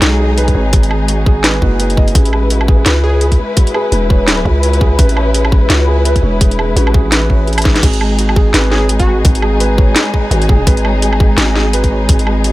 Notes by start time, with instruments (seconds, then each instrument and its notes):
Already playing: felt piano G#3 F#4 G#4 B4 C#5, string section G#3 D#4 G#4
0.02 808-style bass B1, felt piano F#4, snare, closed hi-hat
0.20 felt piano G#4
0.38 felt piano B4, closed hi-hat
0.48 kick, closed hi-hat
0.55 808-style bass G#1, felt piano C#5
0.73 felt piano G#4, kick, closed hi-hat
0.83 closed hi-hat
0.91 felt piano G#3, low woodblock
1.08 felt piano F#4, closed hi-hat
1.26 felt piano G#4, kick
1.44 felt piano B4, snare, closed hi-hat
1.62 808-style bass F#1, felt piano F#4, kick
1.80 felt piano B4, closed hi-hat
1.90 closed hi-hat
1.97 felt piano D#5, kick
2.08 closed hi-hat
2.15 808-style bass A1, string section E4 B4, felt piano G#4, kick, closed hi-hat
2.25 closed hi-hat
2.33 felt piano G#3, low woodblock
2.50 felt piano F#4, closed hi-hat
2.61 low woodblock
2.68 felt piano G#4, kick
2.86 808-style bass C#2, felt piano B4, snare, closed hi-hat
3.04 digital synth lead G#4, felt piano C#5
3.21 felt piano G#4, closed hi-hat
3.32 kick, closed hi-hat
3.39 felt piano G#3
3.57 felt piano F#4, kick, closed hi-hat
3.67 closed hi-hat
3.74 felt piano G#4, low woodblock
3.92 808-style bass E1, felt piano B4, closed hi-hat
4.10 felt piano C#5, kick
4.28 felt piano G#4, snare, closed hi-hat
4.45 808-style bass C#2, felt piano G#3, kick
4.63 felt piano F#4, closed hi-hat
4.73 closed hi-hat
4.81 felt piano G#4, kick
4.98 808-style bass A1, felt piano B4, kick, closed hi-hat
5.09 closed hi-hat
5.16 felt piano C#5, low woodblock
5.34 felt piano G#4, closed hi-hat
5.45 low woodblock
5.52 felt piano G#3, kick
5.70 808-style bass C#2, felt piano F#4, snare, closed hi-hat
5.88 felt piano G#4
6.05 felt piano B4, closed hi-hat
6.16 kick, closed hi-hat
6.23 808-style bass E1, felt piano C#5
6.41 felt piano G#4, kick, closed hi-hat
6.51 closed hi-hat
6.59 felt piano G#3, low woodblock
6.76 808-style bass A1, felt piano F#4, closed hi-hat
6.87 low woodblock
6.94 felt piano G#4, kick
7.12 felt piano B4, snare, closed hi-hat
7.30 felt piano C#5, kick
7.47 felt piano G#4, closed hi-hat
7.53 closed hi-hat
7.58 closed hi-hat, low woodblock
7.62 felt piano G#3, kick, snare, closed hi-hat
7.76 snare, closed hi-hat
7.83 808-style bass G#1, string section G#3 D#4 G#4, felt piano G#4, kick, closed hi-hat, crash
7.94 closed hi-hat
8.01 felt piano G#3, low woodblock
8.19 felt piano F#4, closed hi-hat
8.29 low woodblock
8.36 felt piano G#4, kick
8.54 808-style bass G#1, felt piano B4, snare, closed hi-hat
8.71 digital synth lead G#4, felt piano C#5, snare
8.89 felt piano G#4, closed hi-hat
8.99 digital synth lead F#4, kick, closed hi-hat
9.07 felt piano G#3
9.25 808-style bass G#1, felt piano F#4, kick, closed hi-hat
9.35 closed hi-hat
9.42 felt piano G#4, low woodblock
9.60 felt piano B4, closed hi-hat
9.78 felt piano C#5, kick
9.96 felt piano G#4, snare, closed hi-hat
10.14 felt piano G#3, kick
10.31 808-style bass G#1, felt piano F#4, closed hi-hat
10.42 closed hi-hat
10.49 felt piano G#4, kick
10.67 808-style bass G#1, felt piano B4, kick, closed hi-hat
10.77 closed hi-hat
10.84 felt piano C#5, low woodblock
11.02 felt piano G#4, closed hi-hat
11.13 low woodblock
11.20 felt piano G#3, kick
11.38 808-style bass G#1, felt piano F#4, snare, closed hi-hat
11.56 felt piano G#4, snare
11.73 felt piano B4, closed hi-hat
11.84 kick, closed hi-hat
11.91 felt piano C#5
12.09 808-style bass G#1, felt piano G#4, kick, closed hi-hat
12.19 closed hi-hat
12.27 felt piano G#3, low woodblock
12.44 felt piano F#4, closed hi-hat